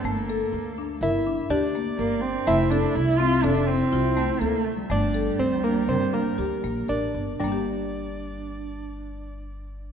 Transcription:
X:1
M:5/4
L:1/16
Q:1/4=123
K:Gdor
V:1 name="Marimba"
A,2 A4 D2 B2 D2 G2 B,2 B4 | A,2 A4 C2 A2 C2 F2 A,2 A4 | A,2 A4 D2 B2 D2 G2 B,2 B4 | [G,B,DG]16- [G,B,DG]4 |]
V:2 name="Soft synth lead"
A,8 E4 D8 | E16- E4 | D4 C2 B,2 C2 B,6 D4 | D16- D4 |]
V:3 name="Cello"
B,8 z8 B,2 C2- | C2 D2 E2 F2 D2 C6 B,2 A, G,- | G,16 z4 | z16 z4 |]
V:4 name="Upright bass" clef=bass
G,,,4 D,,4 G,,,4 D,,4 G,,,4 | F,,,4 C,,4 F,,,4 C,,4 D,,4 | G,,,4 D,,4 G,,,4 D,,2 B,,,2 A,,,2 G,,,2 | G,,,16- G,,,4 |]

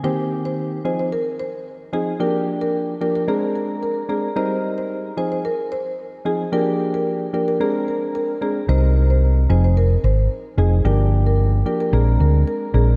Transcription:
X:1
M:4/4
L:1/16
Q:1/4=111
K:Cm
V:1 name="Marimba"
c z2 c z2 c c B z c z3 A z | B z2 B z2 B B A z B z B z A z | c z2 c z2 c c B z c z3 A z | B z2 B z2 B B A z B z B z A z |
c z2 c z2 c c B z c z3 A z | B z2 B z2 B B A z B z B z A z |]
V:2 name="Synth keys"
[E,B,CG]6 [F,CEA]2 z6 [F,CEA]2 | [F,B,DG]6 [F,B,DG]2 [A,CDB]6 [A,CDB]2 | [G,CEB]6 [F,CEA]2 z6 [F,CEA]2 | [F,B,DG]6 [F,B,DG]2 [A,CDB]6 [A,CDB]2 |
[G,CEB]6 [F,CEA]2 z6 [F,CEA]2 | [F,B,DG]6 [F,B,DG]2 [A,CDB]6 [A,CDB]2 |]
V:3 name="Fingered electric bass" clef=bass
z16 | z16 | z16 | z16 |
C,,6 F,,,4 A,,,2 z2 F,,,2 | G,,,6 z2 B,,,2 D,,2 z2 B,,,2 |]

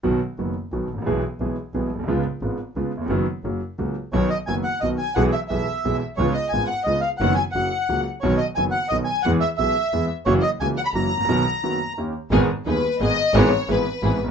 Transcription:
X:1
M:3/4
L:1/16
Q:1/4=176
K:B
V:1 name="Bandoneon"
z12 | z12 | z12 | z12 |
c2 d2 g2 f2 d2 g2 | f2 e2 e6 z2 | c2 d2 g2 f2 d2 ^e2 | f2 g2 f6 z2 |
c2 d2 g2 f2 d2 g2 | f2 e2 e6 z2 | c2 d2 g2 f b a4- | a8 z4 |
[K:G#m] z12 | z12 |]
V:2 name="Violin section"
z12 | z12 | z12 | z12 |
c2 d2 g2 f2 d2 g2 | f2 e2 e6 z2 | c2 d2 g2 f2 d2 ^e2 | f2 g2 f6 z2 |
c2 d2 g2 f2 d2 g2 | f2 e2 e6 z2 | c2 d2 g2 f b a4- | a8 z4 |
[K:G#m] z4 B4 d4 | c4 B6 z2 |]
V:3 name="String section"
z12 | z12 | z12 | z12 |
z12 | z12 | z12 | z12 |
z12 | z12 | z12 | z12 |
[K:G#m] [B,DG]2 z2 [B,DG]2 z2 [B,DG]2 z2 | [B,EG]2 z2 [B,EG]2 z2 [B,EG]2 z2 |]
V:4 name="Grand piano" clef=bass
[B,,,B,,D,F,B,F]2 z2 [F,,,F,,D,F,B,F]2 z2 [B,,,B,,D,F,B,F]2 z/2 G,,,/2 =A,,,/2 ^A,,,/2 | [B,,,B,,E,G,B,G]2 z2 [B,,,B,,E,G,B,G]2 z2 [B,,,B,,E,G,B,G]2 z/2 A,,,/2 B,,,/2 =C,,/2 | [C,,C,G,B,^E]2 z2 [G,,,G,,C,G,B,E]2 z2 [C,,C,G,B,E]2 z/2 D,,/2 =E,,/2 ^E,,/2 | [F,,D,F,B,F]2 z2 [F,,C,F,A,F]2 z2 [C,,C,F,A,F]2 z2 |
[B,,,B,,D,F,B,F]2 z2 [F,,,F,,D,F,B,F]2 z2 [B,,,B,,D,F,B,F]2 z2 | [B,,,B,,E,G,B,G]2 z2 [B,,,B,,E,G,B,G]2 z2 [B,,,B,,E,G,B,G]2 z2 | [C,,C,G,B,^E]2 z2 [G,,,G,,C,G,B,E]2 z2 [C,,C,G,B,E]2 z2 | [F,,D,F,B,F]2 z2 [F,,C,F,A,F]2 z2 [C,,C,F,A,F]2 z2 |
[B,,,B,,D,F,B,F]2 z2 [F,,,F,,D,F,B,F]2 z2 [B,,,B,,D,F,B,F]2 z2 | [E,,E,G,B,G]2 z2 [B,,,B,,E,G,B,G]2 z2 [E,,E,G,B,G]2 z2 | [F,,E,F,A,CF]2 z2 [C,,C,E,A,CF]2 z2 [F,,E,F,A,CF]2 z/2 G,,,/2 =A,,,/2 ^A,,,/2 | [B,,,B,,D,F,B,F]2 z2 [F,,,F,,D,F,B,F]2 z2 [D,,D,A,C=G]2 z2 |
[K:G#m] [G,,,G,,D,G,B,G]2 z2 [D,,,D,,D,G,B,G]2 z2 [G,,,G,,D,G,B,G]2 z2 | [G,,,G,,E,G,B,G]2 z2 [G,,,G,,E,G,B,G]2 z2 [G,,,G,,E,G,B,G]2 z/2 =G,,,/2 z |]
V:5 name="Double bass" clef=bass
B,,,2 z2 F,,,2 z2 B,,,2 =A,,,2 | B,,,2 z2 B,,,2 z2 B,,,2 B,,,2 | C,,2 z2 G,,,2 z2 C,,2 z2 | F,,,2 z2 F,,,2 z2 C,,2 z2 |
B,,,2 z2 F,,,2 z2 B,,,2 z2 | B,,,2 z2 B,,,2 z2 B,,,2 z2 | C,,2 z2 G,,,2 z2 C,,2 z2 | F,,,2 z2 F,,,2 z2 C,,2 z2 |
B,,,2 z2 F,,,2 z2 B,,,2 z2 | E,,2 z2 B,,,2 z2 E,,2 z2 | F,,,2 z2 C,,2 z2 F,,,2 z2 | z12 |
[K:G#m] G,,,2 z2 D,,2 z2 G,,,2 z2 | G,,,2 z2 G,,,2 z2 G,,,2 G,,,2 |]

